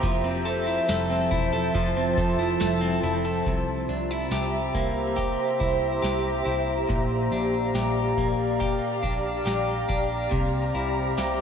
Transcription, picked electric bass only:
0.04 0.79 F1 loud
0.90 1.27 F1 loud
1.32 1.70 E1 medium
1.75 2.13 F1 loud
2.18 2.55 F1 loud
2.62 2.99 F1 loud
3.04 3.41 F1 loud
3.47 3.84 C2 medium
3.89 4.27 C2 medium
4.32 4.70 C2 medium
4.75 5.32 C2 medium
5.61 5.99 C2 medium
6.04 6.41 C2 medium
6.46 6.84 C2 medium
6.90 7.27 A#1 medium
7.32 7.69 A#1 medium
7.75 8.12 A#1 medium
8.18 8.74 A#1 medium
9.04 9.41 A#1 medium
9.46 9.84 A#1 medium
9.90 10.27 A#1 medium
10.32 10.70 C2 medium
10.75 11.13 C2 medium
11.18 11.41 C2 medium

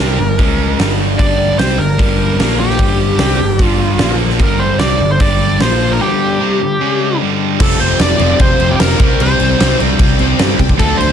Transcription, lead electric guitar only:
0.00 0.95 A#4 medium
1.18 1.56 D5 medium
1.58 1.79 C5 medium
1.78 2.59 A#4 medium
2.60 3.64 G4 medium
3.64 4.16 F4 medium
4.43 4.62 A#4 medium
4.59 4.78 C5 medium
4.79 5.11 D5 medium
5.12 5.20 C5 medium
5.20 5.61 D5 medium
5.62 5.92 C5 medium
5.93 6.02 A#4 medium
6.02 7.17 G4 medium
7.62 7.80 A4 medium
7.80 7.99 C5 medium
8.01 8.41 D5 loud
8.41 8.74 C5 medium
8.71 8.79 G4 medium
8.80 9.21 A#4 medium
9.22 9.77 C5 medium
10.79 10.98 A4 loud
10.97 11.12 C5 medium

